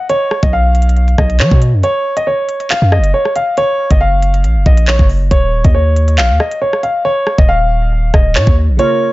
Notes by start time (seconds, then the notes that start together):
0.09 C#5, closed hi-hat
0.31 cross-stick
0.43 B1 D#5, kick, closed hi-hat
0.53 F5
0.75 closed hi-hat
0.82 closed hi-hat
0.89 closed hi-hat
0.96 closed hi-hat
1.08 closed hi-hat
1.18 B1 D#5, kick, cross-stick
1.30 closed hi-hat
1.40 F#3 C#5, clap
1.51 B2, kick
1.62 closed hi-hat
1.73 F#2
1.83 C#5, closed hi-hat
2.17 D#5, closed hi-hat
2.27 C#5
2.49 closed hi-hat
2.60 closed hi-hat
2.70 F5, clap, closed hi-hat
2.82 F#2
2.92 D#5, cross-stick
2.98 F#1
3.04 closed hi-hat
3.14 C#5
3.25 cross-stick
3.36 F5, closed hi-hat
3.57 C#5, closed hi-hat
3.90 F#1 D#5, kick, closed hi-hat
4.01 F5
4.22 closed hi-hat
4.34 closed hi-hat
4.44 A#1, closed hi-hat
4.56 F#1
4.66 A#1 D#5, kick
4.77 closed hi-hat
4.88 C#5, clap
4.99 F#1, kick
5.09 open hi-hat
5.31 D#1 C#5, kick, closed hi-hat
5.64 D#2 D#5, kick, closed hi-hat
5.75 C#5
5.96 closed hi-hat
6.08 closed hi-hat
6.18 A#1 F5, clap, closed hi-hat
6.30 D#2
6.40 D#5, cross-stick
6.51 closed hi-hat
6.62 C#5
6.73 cross-stick
6.83 F5, closed hi-hat
7.05 C#5
7.27 cross-stick
7.38 D#1 D#5, kick
7.49 F5
8.14 D#1 D#5, kick, cross-stick
8.35 A#2 C#5, clap
8.47 D#2, kick
8.69 A#1
8.77 C#3 A#3 F4 C#5, closed hi-hat
8.81 A#4